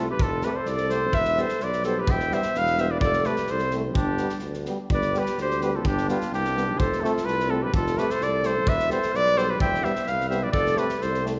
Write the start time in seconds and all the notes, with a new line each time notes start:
Already playing: C2
0.10 G4 B4
0.19 F1 F4 A4, kick
0.42 A3 C4 B4, snare
0.46 G4
0.51 B4 D5
0.56 A4 C5
0.66 C2 A4 D5, snare
0.77 snare
0.90 A3 C4 A4 C5, snare
1.13 E1 B4 E5, kick
1.25 snare
1.36 G3 B3 A4 C5, snare
1.49 snare
1.60 B1 B4 D5, snare
1.73 snare
1.83 G3 B3 A4 C5, snare
1.99 G4 B4
2.07 E1 E5 G5, kick
2.20 snare
2.31 G3 B3 C5 E5, snare
2.42 snare
2.55 E1 B4 F5, snare
2.66 snare
2.78 G3 B3 C5 E5, snare
2.91 B4 D5
3.00 F1 A4 D5, kick
3.13 snare
3.24 A3 C4 G4 B4, snare
3.36 snare
3.47 C2 C5, snare
3.51 A4
3.59 snare
3.71 A3 C4, snare
3.95 G1 D4 G4, kick
4.17 G3 B3, snare
4.29 snare
4.39 D2, snare
4.54 snare
4.65 G3 B3, snare
4.90 G1 D5, kick
4.94 B4
5.02 snare
5.13 G3 B3, snare
5.18 G4 B4
5.26 snare
5.38 D2 G4 C5, snare
5.51 snare
5.61 G3 B3 G4 B4, snare
5.76 F4 A4
5.84 G1 D4 G4, kick
5.98 snare
6.08 G3 B3 D4 F4, snare
6.21 snare
6.31 C2 D4 G4, snare
6.45 snare
6.55 G3 B3, snare
6.78 F1 A4 C5, kick
6.93 snare
7.01 A3 C4 F4 A4
7.05 snare
7.17 snare
7.25 C2 F4 B4, snare
7.40 snare
7.49 A3 C4 F4 A4
7.62 G4 B4
7.72 F1 A4, kick
7.76 F4
7.87 snare
7.95 A3 C4 G4 B4, snare
8.10 A4 C5, snare
8.20 C2 A4 D5, snare
8.43 A3 C4 A4 C5, snare
8.66 E1 B4 E5, kick
8.79 snare
8.89 G3 B3 A4 C5, snare
9.03 snare
9.12 B1 B4 D5, snare
9.26 snare
9.36 G3 B3 A4 C5, snare
9.49 G4 B4
9.59 E1 E5 G5, kick
9.75 snare
9.82 G3 B3 C5 E5, snare
9.96 snare
10.06 C2 B4 F5, snare
10.21 snare
10.29 G3 B3 C5 E5, snare
10.42 B4 D5
10.52 F1 A4 D5, kick
10.66 snare
10.75 A3 C4 G4 B4, snare
10.89 snare
10.99 C2 A4 C5, snare
11.14 snare
11.22 A3 C4, snare